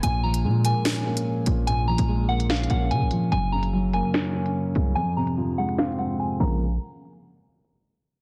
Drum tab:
CC |------------------------------------------------|------------------------------------------------|------------------------------------------------|------------------------------------------x-----|
HH |x--------x--------x-----x--------x--------x-----|x--------x-----------x--x-x-x-x-----x-----x-----|x--------x--------x-----x--------x--------x-----|x--------x-----------x--x-x-x-x-----x-----------|
SD |------------------------o-----------------------|------------------------o-----------------------|------------------------o-----------------------|------------------------o-----------------------|

CC |------------------------------------------------|
HH |------------------------------------------------|
SD |------------------------------------------------|